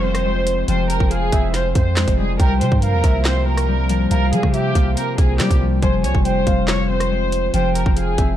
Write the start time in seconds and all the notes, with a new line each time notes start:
Already playing: F1 F3 G3 A#3 C4 F4 C5, downlifter
0.04 C4 C5
0.15 cross-stick, closed hi-hat
0.25 G#3
0.47 closed hi-hat
0.68 F1 F3 C5 G5, closed hi-hat
0.90 A#4, closed hi-hat
1.00 F1, kick
1.11 G#4 F5, closed hi-hat
1.32 F1 C4 E5, kick, closed hi-hat
1.54 F4 C5, snare, closed hi-hat
1.75 F2 C4 C5, kick, closed hi-hat
1.97 G#3, snare, clap, closed hi-hat
2.08 F1, kick, closed hi-hat
2.18 G3 G#4
2.39 C2 C3 A#3 A#4 G5, kick, closed hi-hat
2.61 C3 F3 C5, closed hi-hat
2.72 G2, kick
2.82 A#4 F5, closed hi-hat
2.93 E2
3.04 C2 A#3 E5, kick, closed hi-hat
3.25 C4 C5, snare, clap
3.47 A#3 A#4
3.57 cross-stick, closed hi-hat
3.68 G3
3.89 F3, closed hi-hat
4.11 C2 C3 A#4 F5, closed hi-hat
4.32 F3 G3 G#4, closed hi-hat
4.43 C3, kick, cross-stick
4.54 G4 E5, closed hi-hat
4.75 C2 A#3 F5, kick, closed hi-hat
4.97 C4 A#4, closed hi-hat
5.18 C2 A#3 G#4, kick, closed hi-hat
5.39 G3 G4, snare, clap, closed hi-hat
5.50 C2, kick, closed hi-hat
5.61 F3
5.82 F1 F3 C4 C5 G#5, kick, closed hi-hat
6.04 C2 G3 C#5, closed hi-hat
6.15 F1, kick
6.25 C5 G5, closed hi-hat
6.47 F1 C4 F5, kick, closed hi-hat
6.68 F4 C#5, snare, clap
6.90 C4 C5
7.00 cross-stick, closed hi-hat
7.11 G#3
7.32 closed hi-hat
7.54 F1 F3 C5 G5, closed hi-hat
7.75 A#4, closed hi-hat
7.86 F1, kick
7.97 G#4 F5, closed hi-hat
8.18 F1 C4 E5, kick, closed hi-hat